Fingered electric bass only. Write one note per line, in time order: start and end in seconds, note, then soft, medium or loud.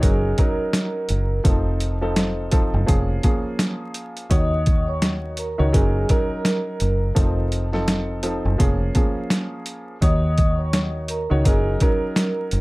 0.03 0.33 F#1 loud
1.10 1.40 F#1 medium
1.45 2.70 F1 loud
2.74 2.86 F#1 medium
2.89 3.19 F1 medium
4.31 5.55 D#2 loud
5.60 5.72 C#2 medium
5.75 6.04 F#1 loud
6.81 7.11 F#1 medium
7.17 8.41 F1 loud
8.45 8.57 F#1 medium
8.60 8.90 F1 loud
10.02 11.27 D#2 loud
11.31 11.43 C#2 medium
11.46 11.76 F#1 loud
12.53 12.61 F#1 medium